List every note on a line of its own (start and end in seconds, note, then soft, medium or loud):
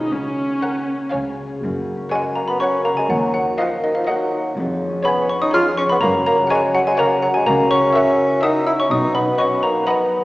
0.00 0.14 B2 soft
0.00 0.14 G#3 soft
0.00 0.12 D#4 medium
0.00 0.14 D#4 soft
0.00 0.61 F#4 soft
0.00 0.14 B4 soft
0.00 0.14 D#5 soft
0.11 0.52 C#2 medium
0.11 0.52 C#3 medium
0.11 1.12 C#3 soft
0.11 1.13 C#4 medium
0.29 1.15 A#3 soft
0.46 1.29 C#4 soft
0.62 0.95 F#4 soft
0.62 1.00 A#4 soft
0.62 1.00 F#5 soft
0.80 1.15 A#4 soft
0.96 1.15 F#4 soft
1.12 1.52 C#2 medium
1.12 1.52 C#3 soft
1.12 1.65 C#3 soft
1.12 1.50 C#5 soft
1.12 1.50 F5 soft
1.12 1.50 G#5 soft
1.30 1.95 C#4 soft
1.47 1.65 F4 soft
1.47 1.65 G#4 soft
1.61 2.01 F#1 medium
1.61 2.02 F#2 medium
1.61 3.12 F#2 medium
1.61 4.52 F#4 soft
1.61 4.52 A#4 medium
1.80 2.60 C#3 soft
1.96 2.44 C#4 soft
2.11 2.23 G#3 medium
2.11 3.58 F#4 soft
2.11 2.48 A#4 medium
2.11 2.48 C#5 medium
2.11 2.49 F#5 medium
2.11 2.34 G#5 medium
2.29 3.74 A#4 soft
2.35 2.42 A#3 medium
2.35 2.47 A#5 soft
2.45 2.76 C#4 soft
2.45 2.59 B5 medium
2.49 2.60 B3 medium
2.60 2.92 C#3 soft
2.60 2.84 C#4 medium
2.60 2.97 A#4 medium
2.60 2.97 C#5 medium
2.60 2.98 F#5 medium
2.60 2.83 C#6 medium
2.77 3.12 C#4 soft
2.85 2.90 A#3 medium
2.85 2.97 A#5 medium
2.93 3.12 C#3 soft
2.93 3.09 G#5 medium
2.99 3.04 G#3 medium
3.09 3.49 D#2 medium
3.09 4.59 D#3 medium
3.09 3.33 F#3 medium
3.09 3.33 F#5 medium
3.26 4.07 A#3 soft
3.34 3.45 F#3 medium
3.34 3.57 F#5 medium
3.42 3.91 D#4 soft
3.58 3.70 F3 medium
3.58 4.59 F#4 soft
3.58 3.95 A#4 medium
3.58 3.95 D#5 medium
3.58 3.81 F5 medium
3.58 3.96 F#5 medium
3.75 4.59 A#4 soft
3.84 3.96 D#3 medium
3.84 3.95 D#5 medium
3.92 4.24 D#4 soft
3.92 4.07 F5 medium
3.97 4.09 F3 medium
4.07 4.57 F#3 medium
4.07 4.40 A#3 soft
4.07 4.44 A#4 medium
4.07 4.44 D#5 medium
4.07 4.53 F#5 medium
4.07 4.45 F#5 medium
4.25 4.59 D#4 soft
4.41 4.59 A#3 soft
4.57 4.95 F1 medium
4.57 6.04 F2 medium
4.57 4.96 F2 medium
4.57 6.03 G#4 medium
4.57 7.43 C#5 medium
4.73 5.53 F3 soft
4.89 5.37 C#4 soft
5.05 5.31 B3 medium
5.05 5.41 G#4 medium
5.05 6.04 G#4 medium
5.05 5.41 C#5 medium
5.05 5.42 G#5 medium
5.05 5.28 B5 medium
5.22 6.66 C#5 medium
5.29 5.42 C#4 medium
5.29 5.41 C#6 medium
5.38 5.69 C#4 medium
5.38 5.53 D#6 medium
5.42 5.54 D#4 medium
5.54 5.86 F3 soft
5.54 5.65 F4 medium
5.54 5.90 G#4 medium
5.54 5.90 C#5 medium
5.54 5.90 G#5 medium
5.54 5.76 F6 medium
5.70 6.33 C#4 soft
5.78 5.84 C#4 medium
5.78 5.89 C#6 medium
5.87 6.05 F3 soft
5.87 6.01 B5 medium
5.92 5.97 B3 medium
6.01 6.41 F#1 medium
6.01 7.49 F#2 medium
6.01 6.41 F#2 medium
6.01 6.13 A#3 medium
6.01 8.73 F#4 medium
6.01 6.24 A#5 medium
6.18 6.98 C#3 medium
6.26 6.38 A#3 medium
6.26 6.49 A#5 medium
6.35 6.81 C#4 medium
6.50 6.61 G#3 medium
6.50 7.93 F#4 medium
6.50 6.86 A#4 medium
6.50 6.86 C#5 medium
6.50 6.86 F#5 medium
6.50 6.73 G#5 medium
6.67 8.93 C#5 medium
6.75 6.80 F#3 medium
6.75 6.86 F#5 medium
6.82 7.13 C#4 medium
6.87 6.93 G#3 medium
6.87 6.98 G#5 medium
6.98 7.29 C#3 medium
6.98 7.09 A#3 medium
6.98 7.34 A#4 medium
6.98 7.34 C#5 medium
6.98 7.34 F#5 medium
6.98 7.21 A#5 medium
7.15 7.61 C#4 soft
7.22 7.28 F#3 medium
7.22 7.34 F#5 medium
7.30 7.45 C#3 medium
7.30 7.45 G#5 medium
7.36 7.46 G#3 medium
7.46 7.85 C#2 medium
7.46 8.93 C#3 medium
7.46 7.85 C#3 medium
7.46 7.70 A#3 medium
7.46 8.73 A#4 medium
7.46 7.69 A#5 medium
7.63 8.42 C#4 medium
7.71 8.44 C#4 loud
7.71 8.39 C#6 medium
7.79 8.26 E4 medium
7.94 9.38 F#4 medium
7.94 8.31 A#4 medium
7.94 8.31 E5 medium
7.94 8.31 F#5 medium
8.11 8.93 A#4 medium
8.27 8.58 E4 medium
8.43 8.74 C#4 medium
8.43 8.66 D#4 medium
8.43 8.78 A#4 medium
8.43 8.78 E5 medium
8.43 8.79 F#5 medium
8.43 8.65 D#6 medium
8.59 8.93 E4 soft
8.67 8.72 E4 medium
8.67 8.78 E6 medium
8.75 8.93 C#4 soft
8.80 8.92 C#4 medium
8.80 8.90 C#6 medium
8.90 9.29 B1 medium
8.90 9.29 B2 medium
8.90 10.24 B2 medium
8.90 9.16 D#4 medium
8.90 10.24 F#4 medium
8.90 10.24 B4 medium
8.90 9.13 D#6 medium
9.08 9.86 F#3 soft
9.15 9.40 B3 medium
9.15 9.37 B5 medium
9.24 9.70 D#4 soft
9.39 9.65 C#4 medium
9.39 10.24 F#4 medium
9.39 9.75 B4 medium
9.39 9.75 D#5 medium
9.39 9.75 F#5 medium
9.39 9.61 C#6 medium
9.55 10.24 B4 medium
9.63 9.87 A#3 medium
9.63 9.85 A#5 medium
9.71 10.02 D#4 soft
9.87 10.18 F#3 soft
9.87 10.11 B3 medium
9.87 10.23 B4 medium
9.87 10.23 D#5 medium
9.87 10.23 F#5 medium
9.87 10.09 B5 medium
10.03 10.24 D#4 soft
10.19 10.24 F#3 soft